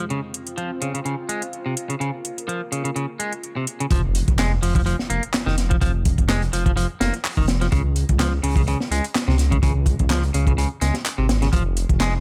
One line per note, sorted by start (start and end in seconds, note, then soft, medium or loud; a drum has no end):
0.10 0.19 C#3 loud
0.10 1.99 C4 medium
0.10 3.87 F4 medium
0.10 closed hi-hat soft
0.34 closed hi-hat medium
0.47 closed hi-hat soft
0.58 0.70 F3 medium
0.58 closed hi-hat soft
0.82 0.93 C#3 medium
0.82 closed hi-hat medium
0.94 0.99 C#3 medium
0.94 closed hi-hat soft
1.05 1.14 C#3 medium
1.05 closed hi-hat soft
1.29 1.41 G#3 medium
1.29 closed hi-hat medium
1.42 closed hi-hat soft
1.53 closed hi-hat soft
1.66 1.74 C3 medium
1.77 closed hi-hat medium
1.89 1.94 C#3 medium
1.89 closed hi-hat soft
2.00 2.10 C#3 loud
2.00 3.89 A#3 medium
2.00 closed hi-hat soft
2.25 closed hi-hat medium
2.38 closed hi-hat soft
2.48 2.60 F3 medium
2.48 closed hi-hat soft
2.72 2.83 C#3 medium
2.72 closed hi-hat medium
2.84 2.89 C#3 medium
2.84 closed hi-hat soft
2.96 3.05 C#3 medium
2.96 closed hi-hat soft
3.20 3.32 G#3 medium
3.20 closed hi-hat medium
3.33 closed hi-hat soft
3.43 closed hi-hat soft
3.56 3.64 C3 medium
3.67 closed hi-hat medium
3.80 3.85 C#3 medium
3.80 closed hi-hat soft
3.91 4.23 F1 loud
3.91 4.00 F3 loud
3.91 kick loud
3.91 closed hi-hat medium
3.91 closed hi-hat soft
3.91 impact medium
4.15 closed hi-hat medium
4.28 4.59 F1 loud
4.28 kick loud
4.28 closed hi-hat soft
4.39 4.51 G#3 medium
4.39 snare loud
4.39 clap loud
4.39 closed hi-hat soft
4.39 closed hi-hat medium
4.62 4.95 F1 medium
4.62 4.74 F3 medium
4.62 closed hi-hat medium
4.62 open hi-hat medium
4.75 4.80 F3 medium
4.75 kick loud
4.75 closed hi-hat soft
4.86 4.95 F3 loud
4.86 closed hi-hat medium
4.86 closed hi-hat soft
4.99 snare soft
5.10 5.20 F1 medium
5.10 5.22 A#3 medium
5.10 closed hi-hat medium
5.23 closed hi-hat soft
5.34 snare loud
5.34 clap loud
5.34 closed hi-hat soft
5.34 closed hi-hat medium
5.46 5.78 F1 medium
5.46 5.54 D#3 medium
5.46 snare medium
5.58 snare medium
5.58 closed hi-hat medium
5.70 5.75 F3 medium
5.70 kick loud
5.70 closed hi-hat soft
5.81 6.14 F1 loud
5.81 5.91 F3 loud
5.81 kick loud
5.81 closed hi-hat medium
5.81 closed hi-hat soft
6.05 kick loud
6.05 closed hi-hat medium
6.18 6.49 F1 loud
6.18 kick loud
6.18 closed hi-hat soft
6.29 6.41 G#3 medium
6.29 snare loud
6.29 clap loud
6.29 closed hi-hat medium
6.29 closed hi-hat soft
6.42 closed hi-hat soft
6.53 6.86 F1 medium
6.53 6.65 F3 medium
6.53 closed hi-hat medium
6.66 6.71 F3 medium
6.66 kick medium
6.66 closed hi-hat soft
6.77 6.86 F3 loud
6.77 closed hi-hat medium
6.77 closed hi-hat soft
7.00 7.11 F1 medium
7.00 7.13 A#3 medium
7.00 snare loud
7.00 closed hi-hat medium
7.14 closed hi-hat soft
7.24 clap loud
7.24 closed hi-hat soft
7.24 open hi-hat medium
7.37 7.68 F1 medium
7.37 7.45 D#3 medium
7.37 kick medium
7.48 snare loud
7.48 closed hi-hat medium
7.61 7.66 F3 medium
7.61 snare soft
7.61 closed hi-hat soft
7.72 8.05 C#2 loud
7.72 7.81 C#3 loud
7.72 kick loud
7.72 closed hi-hat soft
7.72 closed hi-hat medium
7.96 closed hi-hat medium
8.09 8.40 C#2 loud
8.09 kick medium
8.09 closed hi-hat soft
8.20 8.32 F3 medium
8.20 snare loud
8.20 clap loud
8.20 closed hi-hat medium
8.20 closed hi-hat soft
8.43 8.76 C#2 loud
8.43 8.55 C#3 medium
8.43 closed hi-hat medium
8.43 open hi-hat medium
8.56 8.61 C#3 medium
8.56 kick loud
8.56 closed hi-hat soft
8.67 8.77 C#3 loud
8.67 closed hi-hat soft
8.67 closed hi-hat loud
8.80 snare medium
8.91 9.01 C#2 medium
8.91 9.03 G#3 medium
8.91 closed hi-hat medium
9.04 closed hi-hat soft
9.15 snare loud
9.15 clap loud
9.15 closed hi-hat medium
9.15 closed hi-hat soft
9.28 9.59 C#2 medium
9.28 9.36 C3 medium
9.28 snare medium
9.38 snare soft
9.38 closed hi-hat medium
9.51 9.56 C#3 medium
9.51 kick loud
9.51 closed hi-hat soft
9.63 9.95 C#2 loud
9.63 9.72 C#3 loud
9.63 kick loud
9.63 closed hi-hat medium
9.63 closed hi-hat soft
9.86 kick medium
9.86 closed hi-hat medium
9.99 10.31 C#2 loud
9.99 kick loud
9.99 closed hi-hat soft
10.10 10.23 F3 medium
10.10 snare loud
10.10 clap loud
10.10 closed hi-hat medium
10.10 closed hi-hat soft
10.23 closed hi-hat soft
10.34 10.67 C#2 medium
10.34 10.46 C#3 medium
10.34 closed hi-hat medium
10.47 10.52 C#3 medium
10.47 kick medium
10.47 closed hi-hat soft
10.58 10.67 C#3 loud
10.58 closed hi-hat soft
10.58 closed hi-hat medium
10.81 10.92 C#2 medium
10.81 10.94 G#3 medium
10.81 snare soft
10.81 closed hi-hat medium
10.94 snare medium
10.94 closed hi-hat soft
11.06 clap loud
11.06 closed hi-hat soft
11.06 closed hi-hat loud
11.18 11.50 G#1 loud
11.18 11.26 C3 medium
11.29 snare loud
11.29 closed hi-hat medium
11.42 11.47 C#3 medium
11.42 snare medium
11.42 closed hi-hat soft
11.53 11.85 F1 loud
11.53 11.62 F3 loud
11.53 kick loud
11.53 closed hi-hat loud
11.53 closed hi-hat soft
11.77 closed hi-hat medium
11.89 12.20 F1 loud
11.89 kick loud
11.89 closed hi-hat soft
12.00 12.13 G#3 medium
12.00 snare loud
12.00 clap loud
12.00 closed hi-hat medium
12.00 closed hi-hat soft